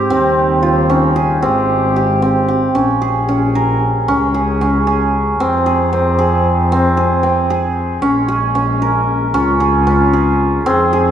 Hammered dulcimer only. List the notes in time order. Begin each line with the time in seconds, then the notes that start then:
Already playing: G4
0.10 C4
0.63 F4
0.90 C#4
1.16 G#4
1.43 C4
1.96 G4
2.22 C4
2.48 G4
2.75 C#4
3.02 G#4
3.29 C#4
3.55 A#4
4.08 C#4
4.34 G#4
4.61 C#4
4.87 G#4
5.40 C4
5.66 G#4
5.93 C4
6.19 G#4
6.72 C4
6.97 G#4
7.23 C4
7.50 G#4
8.02 C#4
8.28 G#4
8.55 C#4
8.82 A#4
9.34 C#4
9.60 G#4
9.87 C#4
10.13 G#4
10.66 C4
10.93 G#4